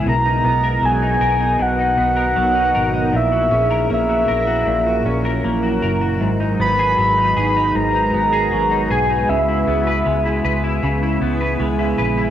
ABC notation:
X:1
M:4/4
L:1/16
Q:1/4=78
K:G#m
V:1 name="Soft synth lead"
a4 g4 f8 | e4 e8 z4 | z2 b6 a6 g2 | e8 z8 |]
V:2 name="Vibraphone"
z16 | z2 G8 z2 E4- | E2 z4 D6 F4- | F2 z8 z2 G4 |]
V:3 name="Ambient pad"
[B,DA]16 | [F,E]16 | [G,FGB]16 | [C,B,E]16 |]
V:4 name="Clean electric guitar"
B,, D B, A F, D A D B,, D B, A F, D A D | A,, F C A A, F A F A,, F C A A, F A F | G,, D B, G F, D G D G,, D B, G F, D G D | C, E B, B G, E B E C, E B, B G, E B E |]
V:5 name="Fingered electric bass" clef=bass
B,,,2 B,,,2 B,,,2 B,,,2 B,,,2 B,,,2 B,,,2 G,,,2 | A,,,2 A,,,2 A,,,2 A,,,2 A,,,2 A,,,2 A,,,2 F,,,2 | G,,,2 G,,,2 G,,,2 G,,,2 G,,,2 G,,,2 G,,,2 B,,,2 | C,,2 C,,2 C,,2 C,,2 C,,2 C,,2 C,,2 A,,,2 |]